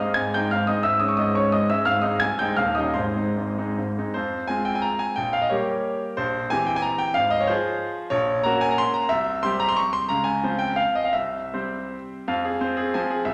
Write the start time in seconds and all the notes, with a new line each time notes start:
Already playing: G#3 C4 D#4 D#5 D#6
0.14 G#1 G#2 G#5 G#6
0.34 G#3 C4 D#4 G5 G6
0.51 G#1 G#2 F5 F6
0.67 G#3 C4 D#4 D#5 D#6
0.83 G#1 G#2 E5 E6
1.00 G#3 C#4 D#6
1.09 C#6
1.17 G#1 G#2 D#5 D#6
1.35 G#3 C#4 C#5 C#6
1.52 G#1 G#2 D#5 D#6
1.70 G#3 C#4 E5 E6
1.85 G#1 G#2 F5 F6
2.02 G#3 C4 D#4 D#5 D#6
2.20 C1 C2 G#5 G#6
2.39 G#3 C4 D#4 G5 G6
2.56 D#1 D#2 F5 F6
2.75 G3 C#4 D#4 D#5 D#6
2.94 G#1 G#2 C5 C6
3.16 G#3 C4 D#4
3.36 G#1 G#2
3.58 G#3 C4 D#4
3.78 G#1 G#2
3.98 G#3 C4 D#4
4.14 F2 C5
4.48 G#3 C4 F4 G#5
4.65 G5
4.75 G#5
4.82 A#5
4.99 G#5
5.16 A#1 G5
5.33 F5
5.42 D#5
5.49 G3 A#3 G4 C#5
6.17 A#1 C5
6.50 E3 C4 G4 G#5
6.66 G5
6.76 G#5
6.82 A#5
6.98 G5
7.14 G#1 F5
7.30 D#5
7.41 C#5
7.47 F3 F4 G#4 C5
8.10 A#1 C#5
8.43 A#3 C#4 F#4 A#5
8.61 G#5
8.71 A#5
8.78 C6
8.94 A#5
9.09 C2 E5
9.43 G3 C4 G4 C6
9.60 A#5
9.68 C6
9.77 C#6
9.93 C6
10.09 C#2 A#5
10.24 G#5
10.43 F3 C4 C5
10.59 G5
10.76 F5
10.95 D#5
11.04 F5
11.13 C2 E5
11.53 G3 C4 C5
12.28 F2 F5
12.45 G#4
12.61 C4 C5
12.77 G#4
12.94 F3 C4 G#5
13.10 G#4
13.25 C2 E5